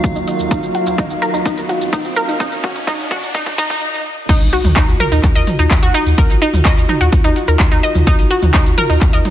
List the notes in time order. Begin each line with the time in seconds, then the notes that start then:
Already playing: D#3 F#3 A#3 D#4 F4 F#4 A#4 D#5 F5, riser
0.04 D#2, kick, shaker
0.16 D#2 D#4, shaker
0.28 D#5, open hi-hat, shaker
0.39 D#2, shaker
0.51 D#2 D#4, kick, shaker
0.63 A#1, shaker
0.75 F#4, open hi-hat
0.87 D#2, mid tom, shaker
0.98 D#2 D#4, kick, shaker
1.10 D#2, shaker
1.22 A#4, mid tom, open hi-hat, shaker
1.34 D#2 D#4, shaker
1.45 D#2 D#4, kick, shaker
1.57 D#2, open hi-hat, shaker
1.69 F#4, mid tom, open hi-hat
1.81 D#2, shaker
1.93 D#2 D#4, kick, shaker
2.05 D#2, shaker
2.16 A#4, open hi-hat, shaker
2.28 D#2 D#4, shaker
2.40 D#2 D#4, kick, shaker
2.52 A#1, shaker
2.64 F#4, kick, open hi-hat, shaker
2.76 D#2, mid tom, shaker
2.87 D#2 D#4, kick, shaker
2.99 D#2, shaker
3.11 F#4, kick, mid tom, open hi-hat, shaker
3.23 D#2, shaker
3.35 D#4, kick, swell, shaker
3.46 kick, shaker
3.58 D#4, kick, open hi-hat
3.70 D#2, kick, shaker
4.29 D#2 D#4 F4 F#4, kick, crash, impact, shaker
4.41 A#1, shaker
4.53 F#4, open hi-hat, shaker
4.64 D#2, mid tom, shaker
4.76 D#2 D#4, kick, clap, shaker
4.88 D#2, shaker
5.00 A#4, mid tom, open hi-hat, shaker
5.12 D#2 D#4, shaker
5.24 D#2, kick, clap, shaker
5.35 D#2 D#5, open hi-hat, shaker
5.47 mid tom, open hi-hat, shaker
5.59 D#2 D#4, shaker
5.71 D#2, kick, clap, shaker
5.83 D#2 F#4, shaker
5.94 D#4, open hi-hat, shaker
6.06 D#2, shaker
6.18 D#2 A#4, kick, shaker
6.30 A#1, shaker
6.42 D#4, open hi-hat, shaker
6.53 D#2, mid tom, shaker
6.65 D#2 D#5, kick, clap, shaker
6.77 D#2, shaker
6.89 D#4, mid tom, open hi-hat, shaker
7.01 D#2 F#4, shaker
7.12 D#2, kick, shaker
7.24 D#2 D#4, shaker
7.36 open hi-hat, shaker
7.48 D#2 A#4, shaker
7.60 D#2, kick, clap, shaker
7.71 D#2 D#4, shaker
7.83 D#5, open hi-hat, shaker
7.95 D#2, mid tom, shaker
8.07 D#2 D#4, kick, shaker
8.19 A#1, shaker
8.30 F#4, open hi-hat, shaker
8.42 D#2, mid tom, shaker
8.54 D#2 D#4, kick, clap, shaker
8.66 D#2, shaker
8.78 A#4, mid tom, open hi-hat, shaker
8.90 D#2 D#4, shaker
9.01 D#2, kick, clap, shaker
9.13 D#2 D#5, open hi-hat, shaker
9.25 mid tom, open hi-hat, shaker